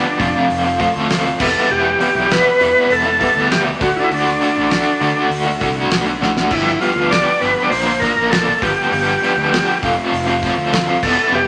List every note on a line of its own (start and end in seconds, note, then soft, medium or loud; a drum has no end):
0.00 0.17 G2 loud
0.00 0.17 D3 medium
0.00 0.18 F3 loud
0.00 0.18 G3 medium
0.00 0.18 B3 loud
0.00 0.46 D4 medium
0.00 0.18 G4 medium
0.19 0.31 F1 medium
0.19 0.65 F2 loud
0.19 0.65 C3 loud
0.19 0.35 F3 loud
0.19 0.34 A3 loud
0.19 0.34 C4 loud
0.19 0.33 F4 loud
0.19 kick loud
0.19 open hi-hat medium
0.34 0.66 F3 medium
0.34 0.65 A3 medium
0.34 0.64 C4 medium
0.34 0.63 F4 medium
0.49 0.85 F1 medium
0.49 open hi-hat medium
0.64 0.78 F3 medium
0.64 0.79 A3 medium
0.64 0.79 C4 medium
0.64 0.80 F4 medium
0.79 0.95 F3 medium
0.79 0.94 A3 medium
0.79 0.93 C4 medium
0.79 0.92 F4 medium
0.79 kick medium
0.79 open hi-hat medium
0.94 1.30 D2 medium
0.94 1.09 F3 medium
0.94 1.09 A3 medium
0.94 1.09 C4 medium
0.94 1.10 F4 medium
1.09 1.38 F2 medium
1.09 1.38 C3 medium
1.09 1.25 F3 loud
1.09 1.25 A3 loud
1.09 1.24 C4 loud
1.09 1.23 F4 medium
1.09 snare loud
1.09 open hi-hat medium
1.24 1.39 F3 medium
1.24 1.39 A3 medium
1.24 1.39 C4 medium
1.24 1.38 F4 medium
1.39 1.52 E1 medium
1.39 1.68 E2 loud
1.39 1.69 B2 loud
1.39 1.69 E3 loud
1.39 1.69 G3 loud
1.39 1.70 B3 loud
1.39 1.70 E4 loud
1.39 1.72 A4 loud
1.39 kick loud
1.39 crash loud
1.69 1.94 E1 loud
1.69 2.28 E2 loud
1.69 2.29 B2 loud
1.69 1.98 E3 loud
1.69 1.99 G3 loud
1.69 2.00 B3 loud
1.69 2.01 E4 loud
1.69 2.33 G4 loud
2.00 2.15 E3 medium
2.00 2.15 G3 medium
2.00 2.14 B3 medium
2.00 2.13 E4 loud
2.00 open hi-hat medium
2.14 2.39 B1 loud
2.14 2.30 E3 medium
2.14 2.30 G3 medium
2.14 2.30 B3 medium
2.14 2.31 E4 medium
2.30 2.90 E2 medium
2.30 2.91 B2 loud
2.30 2.59 E3 loud
2.30 2.60 G3 loud
2.30 2.60 B3 loud
2.30 2.61 E4 loud
2.30 2.93 B4 loud
2.30 snare loud
2.30 open hi-hat medium
2.60 2.72 E2 loud
2.60 2.76 E3 medium
2.60 2.75 G3 medium
2.60 2.74 B3 medium
2.60 2.74 E4 medium
2.60 open hi-hat medium
2.75 3.07 E3 medium
2.75 3.06 G3 medium
2.75 3.05 B3 medium
2.75 3.04 E4 medium
2.90 3.25 E1 loud
2.90 3.47 A4 loud
2.90 open hi-hat medium
3.06 3.19 E3 medium
3.06 3.20 G3 medium
3.06 3.21 B3 medium
3.06 3.22 E4 medium
3.21 3.37 E3 medium
3.21 3.36 G3 medium
3.21 3.35 B3 medium
3.21 3.35 E4 medium
3.21 kick medium
3.21 open hi-hat medium
3.36 3.71 D2 medium
3.36 3.50 E3 medium
3.36 3.51 G3 medium
3.36 3.51 B3 medium
3.36 3.51 E4 medium
3.50 3.79 E2 loud
3.50 3.79 B2 medium
3.50 3.66 E3 loud
3.50 3.66 G3 loud
3.50 3.65 B3 loud
3.50 3.64 E4 medium
3.50 3.65 G4 loud
3.50 snare loud
3.50 open hi-hat medium
3.65 3.80 E3 medium
3.65 3.80 G3 medium
3.65 3.79 B3 medium
3.65 3.79 E4 medium
3.81 3.93 D2 medium
3.81 4.09 D3 medium
3.81 4.11 A3 loud
3.81 4.12 D4 loud
3.81 3.97 F#4 loud
3.81 4.12 F#4 loud
3.81 kick loud
3.81 open hi-hat medium
3.96 4.03 D4 medium
3.96 3.98 E4 medium
4.04 4.11 E4 medium
4.10 4.34 D2 loud
4.10 4.40 D3 loud
4.10 4.40 A3 loud
4.10 4.42 D4 loud
4.10 5.28 D4 medium
4.10 4.42 F#4 loud
4.10 open hi-hat medium
4.28 snare soft
4.41 4.69 D3 medium
4.41 4.57 A3 medium
4.41 4.57 D4 medium
4.41 4.55 F#4 loud
4.41 open hi-hat medium
4.56 4.80 A1 loud
4.56 4.71 A3 medium
4.56 4.72 D4 medium
4.56 4.72 F#4 medium
4.70 4.99 D3 medium
4.70 5.00 A3 medium
4.70 5.01 D4 loud
4.70 5.01 F#4 loud
4.70 snare loud
4.70 open hi-hat medium
5.01 5.46 D3 medium
5.01 5.12 D3 medium
5.01 5.17 A3 medium
5.01 5.17 D4 medium
5.01 5.14 F#4 medium
5.01 open hi-hat medium
5.15 5.47 A3 medium
5.15 5.47 D4 medium
5.15 5.45 F#4 medium
5.30 5.54 D2 medium
5.30 open hi-hat medium
5.46 5.60 A3 medium
5.46 5.61 D4 medium
5.46 5.61 F#4 medium
5.60 5.88 C2 medium
5.60 5.89 D3 medium
5.60 5.76 A3 medium
5.60 5.76 D4 medium
5.60 5.74 F#4 medium
5.60 kick medium
5.60 open hi-hat medium
5.75 5.90 A3 medium
5.75 5.91 D4 medium
5.75 5.91 F#4 medium
5.90 6.18 B1 medium
5.90 6.19 D3 medium
5.90 6.07 A3 loud
5.90 6.07 D4 loud
5.90 6.05 F#4 loud
5.90 snare loud
5.90 open hi-hat medium
6.06 6.20 A3 medium
6.06 6.22 D4 medium
6.06 6.22 F#4 medium
6.21 6.48 A1 medium
6.21 6.49 D3 medium
6.21 6.50 A3 medium
6.21 6.52 D4 medium
6.21 6.50 F#4 loud
6.21 snare medium
6.37 snare medium
6.51 6.75 G1 loud
6.51 7.10 G2 loud
6.51 7.11 D3 loud
6.51 6.80 F3 loud
6.51 6.80 G3 loud
6.51 6.81 B3 loud
6.51 6.80 E4 medium
6.51 6.82 G4 loud
6.51 kick loud
6.51 crash loud
6.67 snare soft
6.81 6.98 F3 medium
6.81 6.96 G3 medium
6.81 6.96 B3 loud
6.81 7.12 F4 medium
6.81 6.94 G4 medium
6.81 open hi-hat medium
6.96 7.19 D2 loud
6.96 7.12 F3 medium
6.96 7.12 G3 medium
6.96 7.12 B3 medium
6.96 7.12 G4 medium
7.10 7.70 G2 medium
7.10 7.70 D3 medium
7.10 7.39 F3 medium
7.10 7.40 G3 medium
7.10 7.41 B3 loud
7.10 7.42 G4 loud
7.10 7.42 D5 loud
7.10 snare loud
7.10 open hi-hat loud
7.41 7.53 G1 medium
7.41 7.57 F3 medium
7.41 7.56 G3 medium
7.41 7.55 B3 medium
7.41 7.54 G4 medium
7.41 7.63 B4 medium
7.41 open hi-hat medium
7.55 7.70 F3 medium
7.55 7.70 G3 medium
7.55 7.69 B3 medium
7.55 7.69 G4 medium
7.64 7.71 D5 medium
7.70 8.07 A#1 loud
7.70 8.16 A#2 medium
7.70 8.16 D3 loud
7.70 7.87 F3 loud
7.70 7.86 A#3 loud
7.70 7.85 D4 loud
7.70 7.84 A#4 loud
7.70 8.02 C5 loud
7.70 open hi-hat loud
7.85 8.00 F3 medium
7.85 8.00 A#3 medium
7.85 8.01 D4 medium
7.85 8.02 A#4 medium
8.00 8.17 F3 medium
8.00 8.16 A#3 medium
8.00 8.16 D4 medium
8.00 8.31 A#4 loud
8.00 8.15 A#4 medium
8.00 kick medium
8.00 snare soft
8.00 open hi-hat medium
8.16 8.52 A1 medium
8.16 8.30 F3 medium
8.16 8.31 A#3 medium
8.16 8.31 D4 medium
8.16 8.32 A#4 medium
8.30 8.59 A#2 loud
8.30 8.59 D3 loud
8.30 8.47 F3 medium
8.30 8.47 A#3 loud
8.30 8.46 D4 loud
8.30 8.62 A4 loud
8.30 8.45 A#4 loud
8.30 snare loud
8.30 open hi-hat medium
8.46 8.61 F3 medium
8.46 8.60 A#3 medium
8.46 8.60 D4 medium
8.46 8.60 A#4 medium
8.61 8.74 G1 medium
8.61 8.91 G2 loud
8.61 8.91 D3 loud
8.61 8.91 F3 loud
8.61 8.92 G3 loud
8.61 8.92 B3 loud
8.61 9.78 G4 medium
8.61 8.93 G4 loud
8.61 kick loud
8.61 open hi-hat medium
8.92 9.15 G1 loud
8.92 9.51 G2 medium
8.92 9.52 D3 loud
8.92 9.21 F3 loud
8.92 9.21 G3 loud
8.92 9.23 B3 loud
8.92 9.23 G4 loud
8.92 open hi-hat medium
9.09 snare soft
9.22 9.38 F3 medium
9.22 9.38 G3 medium
9.22 9.37 B3 medium
9.22 9.36 G4 medium
9.22 open hi-hat medium
9.36 9.60 D2 loud
9.36 9.52 F3 medium
9.36 9.53 G3 medium
9.36 9.53 B3 medium
9.36 9.54 G4 medium
9.52 9.80 G2 medium
9.52 9.80 D3 loud
9.52 9.81 F3 medium
9.52 9.81 G3 loud
9.52 9.81 B3 loud
9.52 9.81 G4 loud
9.52 snare loud
9.52 open hi-hat medium
9.82 9.94 F1 loud
9.82 10.27 F2 loud
9.82 10.27 C3 loud
9.82 9.98 F3 loud
9.82 9.98 A3 loud
9.82 9.97 C4 loud
9.82 9.96 F4 loud
9.82 kick loud
9.82 open hi-hat medium
9.97 10.28 F3 medium
9.97 10.28 A3 medium
9.97 10.27 C4 medium
9.97 10.26 F4 medium
10.12 10.47 F1 loud
10.12 open hi-hat medium
10.27 10.40 F3 medium
10.27 10.41 A3 medium
10.27 10.42 C4 medium
10.27 10.43 F4 medium
10.41 10.58 F3 medium
10.41 10.57 A3 medium
10.41 10.57 C4 medium
10.41 10.56 F4 medium
10.41 kick medium
10.41 snare soft
10.41 open hi-hat medium
10.56 10.91 D2 medium
10.56 10.71 F3 medium
10.56 10.72 A3 medium
10.56 10.72 C4 medium
10.56 10.72 F4 medium
10.71 11.00 F2 loud
10.71 11.00 C3 loud
10.71 10.88 F3 loud
10.71 10.87 A3 loud
10.71 10.87 C4 loud
10.71 10.86 F4 loud
10.71 snare loud
10.71 open hi-hat medium
10.87 11.01 F3 medium
10.87 11.01 A3 medium
10.87 11.01 C4 medium
10.87 11.00 F4 medium
11.02 11.14 E1 medium
11.02 11.31 E2 loud
11.02 11.31 B2 loud
11.02 11.32 E3 loud
11.02 11.32 G3 loud
11.02 11.33 B3 loud
11.02 11.33 E4 loud
11.02 11.33 A4 loud
11.02 kick loud
11.02 crash loud
11.32 11.48 E1 loud
11.32 11.48 E2 loud
11.32 11.48 B2 loud
11.32 11.48 E3 medium
11.32 11.48 G3 loud
11.32 11.48 B3 loud
11.32 11.48 E4 loud
11.32 11.48 G4 loud